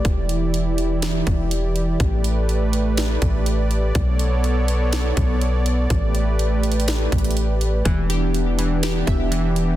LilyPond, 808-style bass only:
\new Staff \with { instrumentName = "808-style bass" } { \clef bass \time 4/4 \key e \dorian \tempo 4 = 123 e,,2~ e,,8 e,,4. | a,,2~ a,,8 a,,4. | b,,2~ b,,8 b,,4. | a,,2~ a,,8 a,,4. |
e,,2~ e,,8 e,,4. | }